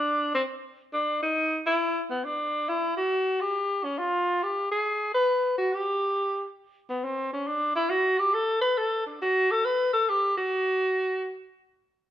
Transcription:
Already playing: D4
0.35 C4
0.93 D4
1.22 D#4
1.66 E4
2.10 B3
2.24 D4
2.69 E4
2.97 F#4
3.41 G4
3.84 C#4
3.98 F4
4.43 G4
4.71 G#4
5.14 B4
5.58 F#4
5.73 G4
6.89 B3
7.04 C4
7.33 C#4
7.47 D4
7.75 E4
7.90 F#4
8.18 G4
8.34 A4
8.61 B4
8.77 A4
9.06 D4
9.21 F#4
9.51 A4
9.65 B4
9.93 A4
10.09 G4
10.37 F#4

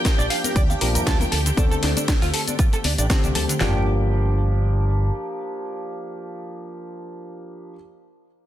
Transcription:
Already playing: F3 A#3 D4 G4 G5
0.05 A#4, kick, snare, closed hi-hat, shaker
0.19 A#1 D5, closed hi-hat, shaker
0.30 F5, open hi-hat
0.44 A#4, closed hi-hat, high conga, shaker
0.56 D2 D5, kick, closed hi-hat, shaker
0.70 F5, closed hi-hat, muted conga, shaker
0.81 A#1 F3 A#3 D4 G4 A#4, open hi-hat, high conga
0.95 F2 A#4, closed hi-hat, shaker
1.06 D2 A4, kick, snare, closed hi-hat, shaker
1.20 A#4, closed hi-hat, high conga, shaker
1.32 D2 A4, open hi-hat
1.46 D3, closed hi-hat, shaker
1.57 D2 D3 A3 C4 D4 A4, kick, closed hi-hat, high conga, shaker
1.71 A4, closed hi-hat, shaker
1.83 D2 D4, snare, open hi-hat
1.97 D4, closed hi-hat, muted conga, high conga, shaker
2.08 D4, kick, snare, closed hi-hat, shaker
2.22 D2 F4, open hi-hat, shaker
2.34 A4, open hi-hat
2.47 D4, closed hi-hat, high conga, shaker
2.59 F4, kick, closed hi-hat, shaker
2.73 A4, muted fingered electric bass stroke, closed hi-hat, shaker
2.84 D2 D4, open hi-hat, muted conga, high conga
2.98 A1 D4, closed hi-hat, shaker
3.10 D3 A3 C4 G4, kick, snare, closed hi-hat, shaker
3.24 C2 D4, closed hi-hat, high conga, shaker
3.35 D2 A4, open hi-hat, low conga
3.49 D3, closed hi-hat, shaker
3.60 G1 F3 A#3 D4 G4, snare, clap, floor tom

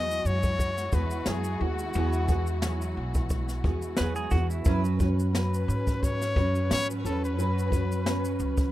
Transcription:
Already playing: E2 F#3 G#3 B3 E4 F#4 G#4 D#5
0.11 shaker
0.25 F#2 C#5, shaker
0.43 kick, shaker
0.59 kick, shaker
0.77 snare, shaker
0.92 E2 B3 F#4 G#4 B4, kick, shaker
1.11 shaker
1.26 F#2 F#3 B3 F#4 G#4, snare, shaker
1.44 shaker
1.60 D#2 B3 F#4 G#4
1.79 shaker
1.94 E2 E3 F#3 B3 F#4 G#4, shaker
2.13 shaker
2.28 B3 F#4 G#4, kick, shaker
2.47 shaker
2.62 F#3 B3 F#4 G#4, snare, shaker
2.82 shaker
2.97 B1
3.14 kick, shaker
3.30 kick, shaker
3.48 snare, shaker
3.64 E2 B3 F#4 G#4, kick
3.82 shaker
3.97 E2 F#3 B3 F#4 B4, snare, shaker
4.01 G#4
4.16 G#4, shaker
4.31 E2 F#4 G#4, kick, shaker
4.35 B3
4.50 E4, shaker
4.65 F#2 F#3 C#4 F#4 B4, kick, shaker
4.85 shaker
4.99 C#4 F#4 B4, kick, shaker
5.19 shaker
5.32 F#3 C#4 F#4 B4, snare, shaker
5.54 shaker
5.68 G#2, shaker
5.87 kick, shaker
6.03 C#5, kick, shaker
6.22 snare, shaker
6.35 F#2 C#4 F#4 B4, kick
6.55 shaker
6.69 G#2 F#3 C#4 F#4 B4 C#5, snare, shaker
6.90 shaker
7.03 E2 C#4 F#4 A4 B4, shaker
7.25 B4, shaker
7.37 F#2 F#3 C#4 F#4 B4, shaker
7.59 shaker
7.70 C#4 F#4 B4, kick, shaker
7.92 shaker
8.04 F#3 C#4 F#4 B4, snare, shaker
8.25 shaker
8.40 C#2, shaker
8.57 kick, shaker

